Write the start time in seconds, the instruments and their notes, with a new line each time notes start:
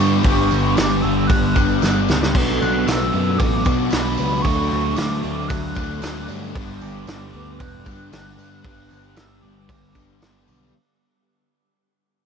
Already playing: overdriven electric guitar G2 D3 G3 B3 D4 G4, soft synth lead C#6
0.00 picked electric bass G2, overdriven electric guitar G3
0.23 picked electric bass G1, overdriven electric guitar G2 D3 G3 B3 D4 G4, kick, open hi-hat, tambourine
0.51 picked electric bass G1, tambourine
0.74 picked electric bass G1, overdriven electric guitar G2 D3 G3, soft synth lead D6, snare, open hi-hat, tambourine
1.02 picked electric bass G1, overdriven electric guitar G2 D3 G3, soft synth lead E6, tambourine
1.27 picked electric bass G1, overdriven electric guitar G2 D3 G3, soft synth lead F#6, kick, open hi-hat, tambourine
1.55 picked electric bass G1, overdriven electric guitar G2 D3 G3 B3 D4, kick, tambourine
1.82 picked electric bass G1, overdriven electric guitar G2 D3 G3 B3 D4, snare, tambourine
2.08 picked electric bass C#2, overdriven electric guitar G2 D3 G3, snare, tambourine
2.23 snare
2.34 picked electric bass B1, overdriven electric guitar B2 F#3 B3 D4 F#4, twelve-string acoustic guitar A3, kick, tambourine, crash
2.61 picked electric bass B1, twelve-string acoustic guitar D4, soft synth lead F#6, tambourine
2.87 picked electric bass B1, overdriven electric guitar B2 F#3 B3, twelve-string acoustic guitar A3, soft synth lead E6, snare, open hi-hat, tambourine
3.13 picked electric bass F#2, overdriven electric guitar B2 F#3 B3, twelve-string acoustic guitar A3, tambourine
3.38 picked electric bass A1, overdriven electric guitar B2 F#3 B3, twelve-string acoustic guitar F#4, soft synth lead D6, kick, open hi-hat, tambourine
3.65 picked electric bass B2, overdriven electric guitar F#3 B3 D4, twelve-string acoustic guitar D4, kick, tambourine
3.69 overdriven electric guitar B2
3.90 picked electric bass B1, overdriven electric guitar B2 F#3 B3, twelve-string acoustic guitar F#4, soft synth lead B5, snare, open hi-hat, tambourine
3.95 overdriven electric guitar B3 D4
4.17 picked electric bass C#2, overdriven electric guitar B2 F#3 B3, twelve-string acoustic guitar D4, tambourine
4.42 picked electric bass D2, overdriven electric guitar D3 A3 D4, twelve-string acoustic guitar A3, soft synth lead C#6, kick, open hi-hat, tambourine
4.46 overdriven electric guitar F#3 A3 D4 F#4
4.72 picked electric bass D2
4.96 picked electric bass D2, overdriven electric guitar D3 A3 D4, twelve-string acoustic guitar A3, soft synth lead D6, snare, open hi-hat, tambourine
5.23 picked electric bass D2, overdriven electric guitar D3 A3 D4, twelve-string acoustic guitar A3, tambourine
5.48 picked electric bass D2, overdriven electric guitar D3 A3 D4, twelve-string acoustic guitar F#4, soft synth lead F#6, kick, open hi-hat, tambourine
5.75 picked electric bass D2, overdriven electric guitar F#3 A3 D4, kick, tambourine
5.80 overdriven electric guitar D3
6.02 picked electric bass D2, overdriven electric guitar D3 F#3 A3 D4, twelve-string acoustic guitar F#4, snare, open hi-hat, tambourine
6.28 picked electric bass G2, overdriven electric guitar D3 A3 D4, twelve-string acoustic guitar C#4, tambourine
6.54 picked electric bass G1, overdriven electric guitar G2 D3 G3 B3 G4, kick, open hi-hat, tambourine
6.59 overdriven electric guitar D4
6.81 picked electric bass G1, twelve-string acoustic guitar B3, soft synth lead D6, tambourine
7.07 picked electric bass G1, overdriven electric guitar G2 D3 G3, snare, open hi-hat, tambourine
7.33 picked electric bass D2, overdriven electric guitar G2 D3 G3, twelve-string acoustic guitar B3, tambourine
7.59 picked electric bass E1, overdriven electric guitar G2 D3 G3, soft synth lead F#6, kick, open hi-hat, tambourine
7.85 picked electric bass G2, overdriven electric guitar G2 D3 G3 B3 D4, twelve-string acoustic guitar D4, kick, tambourine
8.11 picked electric bass G1, overdriven electric guitar G2 D3 G3 B3 D4, snare, open hi-hat, tambourine
8.38 picked electric bass G2, overdriven electric guitar G2 D3 G3, twelve-string acoustic guitar D4, tambourine
8.63 picked electric bass G1, overdriven electric guitar G2 D3 G3 B3 D4 G4, soft synth lead F#6, kick, open hi-hat, tambourine
8.91 picked electric bass G1, twelve-string acoustic guitar B3, tambourine
9.16 picked electric bass G1, overdriven electric guitar G2 D3 G3, soft synth lead E6, snare, open hi-hat, tambourine
9.42 picked electric bass G1, overdriven electric guitar G2 D3 G3, twelve-string acoustic guitar B3, soft synth lead D6, tambourine
9.68 picked electric bass G1, overdriven electric guitar G2 D3 G3, kick, open hi-hat, tambourine
9.95 picked electric bass G1, overdriven electric guitar G2 D3 G3 B3 D4, twelve-string acoustic guitar D4, kick, tambourine
10.21 picked electric bass G1, overdriven electric guitar G2 D3 G3 B3 D4, snare, open hi-hat, tambourine
10.47 picked electric bass B1, overdriven electric guitar G2 D3 G3, twelve-string acoustic guitar D4, tambourine